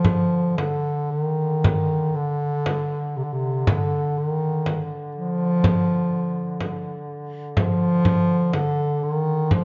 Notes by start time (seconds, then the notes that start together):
Already playing: D3 F3
0.05 frame drum
0.57 D3, frame drum
1.11 D3
1.22 D#3
1.64 frame drum
2.15 D3
2.66 frame drum
3.17 C3
3.24 D3
3.33 C3
3.67 D3, frame drum
4.18 D#3
4.66 frame drum
5.16 F3
5.64 frame drum
6.61 frame drum
7.57 F3, frame drum
8.05 frame drum
8.53 D3, frame drum
9.03 D#3
9.51 F3, frame drum